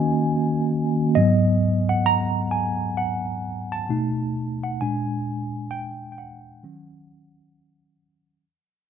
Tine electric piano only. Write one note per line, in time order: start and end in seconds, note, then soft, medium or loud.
0.00 1.18 D#3 medium
0.00 1.19 A#3 medium
0.00 1.19 C#4 medium
0.00 1.18 F#4 medium
0.00 1.15 D#5 medium
1.15 2.49 G#2 soft
1.15 2.49 F#3 soft
1.15 2.49 B3 medium
1.15 1.92 D#5 medium
1.89 2.07 F#5 medium
2.06 2.54 A#5 loud
2.51 2.94 G#5 medium
2.97 3.74 F#5 medium
3.72 4.66 A5 medium
3.89 4.76 B2 soft
3.89 4.77 A3 soft
3.89 4.77 D#4 medium
4.64 4.81 F#5 medium
4.81 5.46 A#2 soft
4.81 5.46 G#3 soft
4.81 5.46 D4 medium
4.81 5.74 G#5 medium
5.71 6.11 G5 medium
6.12 6.17 G5 soft
6.18 7.95 F#5 medium
6.63 7.95 D#3 soft
6.63 7.95 F#3 soft
6.63 7.95 C#4 soft